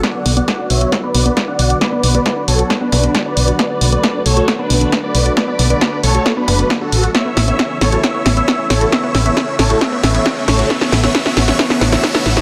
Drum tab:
HH |x-oxx-oxx-oxx-ox|x-oxx-oxx-oxx-ox|x-oxx-oxx-oxx-ox|x-oxx-oxx-oxx-ox|
SD |o---o---o---o---|o---o---o---o---|o---o---o---o---|o---o---o---o---|
BD |o---o---o---o---|o---o---o-o-o---|o---o---o---o---|o---o---o-o-o---|

HH |x-oxx-oxx-oxx-ox|x-oxx-oxx-oxx-ox|x-oxx-oxx-oxx-ox|
SD |o-o-o-o-o-o-o-o-|o-o-o-o-o-o-o-o-|oooooooooooooooo|
BD |o---o---o---o---|o---o---o-o-o---|o---o---o---o---|